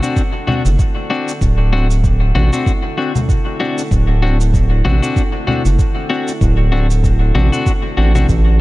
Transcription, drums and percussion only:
0.03 shaker
0.16 kick, shaker
0.48 low conga
0.66 shaker
0.79 kick, shaker
1.28 shaker
1.41 kick, shaker
1.90 shaker
2.04 kick, shaker
2.36 low conga
2.53 shaker
2.66 kick, shaker
3.16 low conga, shaker
3.29 kick, shaker
3.78 shaker
3.91 kick, shaker
4.41 shaker
4.54 kick, shaker
4.85 low conga
5.03 shaker
5.16 kick, shaker
5.48 low conga
5.65 shaker
5.79 kick, shaker
6.28 shaker
6.41 kick, shaker
6.90 shaker
7.04 kick, shaker
7.35 low conga
7.53 shaker
7.66 kick, shaker
8.15 low conga, shaker
8.29 kick, shaker

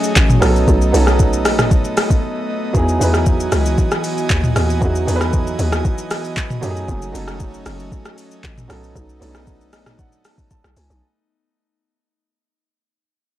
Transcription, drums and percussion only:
0.04 shaker
0.16 kick, clap, shaker
0.30 mid tom, shaker
0.42 cross-stick, open hi-hat, shaker
0.56 shaker
0.68 kick, shaker
0.81 shaker
0.94 open hi-hat, shaker
1.07 cross-stick, shaker
1.19 kick, shaker
1.33 shaker
1.45 cross-stick, open hi-hat, shaker
1.59 cross-stick, mid tom, shaker
1.71 kick, shaker
1.85 shaker
1.97 cross-stick, open hi-hat, shaker
2.10 kick, shaker
2.75 kick, shaker
2.88 shaker
3.01 open hi-hat, shaker
3.14 cross-stick, shaker
3.26 kick, shaker
3.40 shaker
3.52 cross-stick, open hi-hat, shaker
3.66 shaker
3.78 kick, shaker
3.91 cross-stick, shaker
4.04 open hi-hat, shaker
4.18 shaker
4.30 kick, clap, shaker
4.44 mid tom, shaker
4.56 cross-stick, open hi-hat, shaker
4.70 shaker
4.82 kick, shaker
4.95 shaker
5.08 open hi-hat, shaker
5.21 cross-stick, shaker
5.33 kick, shaker
5.47 shaker
5.59 open hi-hat, shaker
5.72 cross-stick, shaker
5.85 kick, shaker
5.98 shaker
6.11 cross-stick, open hi-hat, shaker
6.24 shaker
6.37 kick, clap, shaker
6.50 mid tom, shaker
6.63 open hi-hat, shaker
6.76 shaker
6.88 kick, shaker
7.02 shaker
7.15 open hi-hat, shaker
7.28 cross-stick, shaker
7.40 kick, shaker
7.54 shaker
7.66 cross-stick, open hi-hat, shaker
7.80 shaker
7.92 kick, shaker
8.05 cross-stick, shaker
8.18 open hi-hat, shaker
8.31 shaker
8.44 kick, clap, shaker
8.58 mid tom, shaker
8.70 cross-stick, open hi-hat, shaker
8.84 shaker
8.96 kick, shaker
9.09 shaker
9.22 open hi-hat, shaker
9.35 cross-stick, shaker
9.47 kick, shaker
9.61 shaker
9.73 cross-stick, open hi-hat, shaker
9.86 cross-stick, mid tom, shaker
9.99 kick, shaker
10.12 shaker
10.25 cross-stick, open hi-hat, shaker
10.38 kick, shaker
10.51 kick, shaker
10.64 cross-stick, shaker
10.77 open hi-hat, shaker
10.90 shaker

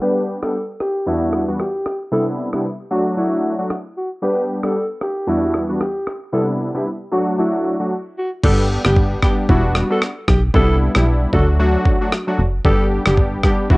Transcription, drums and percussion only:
0.43 cross-stick
0.80 cross-stick
1.33 cross-stick
1.60 cross-stick
1.86 cross-stick
2.53 cross-stick
3.70 cross-stick
4.63 cross-stick
5.01 cross-stick
5.54 cross-stick
5.81 cross-stick
6.07 cross-stick
8.44 kick, crash
8.85 cross-stick
8.96 kick
9.22 kick, cross-stick
9.49 kick
9.75 cross-stick
10.02 cross-stick
10.28 kick, cross-stick
10.54 kick
10.95 cross-stick
11.33 kick
11.85 kick
12.12 cross-stick
12.65 kick
13.06 cross-stick
13.17 kick
13.43 kick, cross-stick
13.70 kick

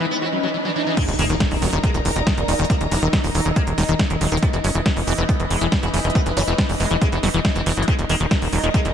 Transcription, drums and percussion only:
0.97 kick, closed hi-hat, crash
1.08 closed hi-hat
1.19 open hi-hat
1.30 closed hi-hat
1.40 kick, snare, closed hi-hat
1.51 open hi-hat
1.62 open hi-hat
1.73 closed hi-hat
1.84 kick, closed hi-hat
1.94 closed hi-hat
2.05 open hi-hat
2.16 closed hi-hat
2.27 kick, snare, closed hi-hat
2.38 closed hi-hat
2.48 open hi-hat
2.59 closed hi-hat
2.65 closed hi-hat
2.70 kick, closed hi-hat
2.81 closed hi-hat
2.91 open hi-hat
3.02 closed hi-hat
3.13 kick, snare, closed hi-hat
3.24 open hi-hat
3.35 open hi-hat
3.45 closed hi-hat
3.56 kick, closed hi-hat
3.67 closed hi-hat
3.78 snare, open hi-hat
3.89 closed hi-hat
3.99 kick, snare, closed hi-hat
4.10 closed hi-hat
4.21 open hi-hat
4.32 closed hi-hat
4.37 closed hi-hat
4.43 kick, closed hi-hat
4.53 closed hi-hat
4.64 open hi-hat
4.75 closed hi-hat
4.86 kick, snare, closed hi-hat
4.97 open hi-hat
5.07 open hi-hat
5.18 closed hi-hat
5.29 kick, closed hi-hat
5.40 closed hi-hat
5.51 open hi-hat
5.61 closed hi-hat
5.72 kick, snare, closed hi-hat
5.83 closed hi-hat
5.94 open hi-hat
6.04 closed hi-hat
6.10 closed hi-hat
6.15 kick, closed hi-hat
6.26 closed hi-hat
6.37 open hi-hat
6.48 closed hi-hat
6.58 kick, snare, closed hi-hat
6.69 open hi-hat
6.80 open hi-hat
6.91 closed hi-hat
7.02 kick, closed hi-hat
7.12 closed hi-hat
7.23 snare, open hi-hat
7.34 closed hi-hat
7.45 kick, snare, closed hi-hat
7.56 closed hi-hat
7.66 open hi-hat
7.77 closed hi-hat
7.82 closed hi-hat
7.88 kick, closed hi-hat
7.99 closed hi-hat
8.09 open hi-hat
8.20 closed hi-hat
8.31 kick, snare, closed hi-hat
8.42 open hi-hat
8.53 open hi-hat
8.63 closed hi-hat
8.74 kick, closed hi-hat
8.85 closed hi-hat

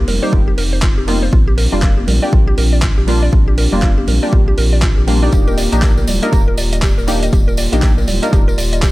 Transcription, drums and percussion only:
0.08 open hi-hat, low conga
0.33 kick
0.58 open hi-hat
0.82 kick, clap
1.08 open hi-hat, high conga
1.33 kick
1.58 open hi-hat
1.82 kick, clap
1.97 high conga
2.07 open hi-hat, low conga
2.33 kick
2.58 open hi-hat
2.82 kick, clap
3.08 open hi-hat
3.33 kick
3.58 open hi-hat
3.74 high conga
3.82 kick, clap
3.98 high conga
4.07 open hi-hat, low conga
4.33 kick
4.58 open hi-hat
4.82 kick, clap
5.07 open hi-hat, high conga
5.32 kick, closed hi-hat, tambourine
5.47 tambourine
5.58 open hi-hat, tambourine
5.73 closed hi-hat, tambourine
5.82 kick, clap, closed hi-hat, tambourine
5.97 tambourine, high conga
6.07 open hi-hat, tambourine, low conga
6.23 closed hi-hat, tambourine
6.32 kick, closed hi-hat, tambourine
6.57 open hi-hat, tambourine
6.73 closed hi-hat, tambourine
6.82 kick, clap, closed hi-hat, tambourine
6.99 tambourine
7.08 open hi-hat, tambourine
7.23 closed hi-hat, tambourine
7.33 kick, closed hi-hat, tambourine
7.48 tambourine
7.57 open hi-hat, tambourine
7.73 closed hi-hat, tambourine, high conga
7.82 kick, clap, closed hi-hat, tambourine
7.98 tambourine, high conga
8.08 open hi-hat, tambourine, low conga
8.23 closed hi-hat, tambourine
8.33 kick, closed hi-hat, tambourine
8.49 tambourine
8.58 open hi-hat, tambourine
8.73 closed hi-hat, tambourine
8.82 kick, clap, closed hi-hat, tambourine

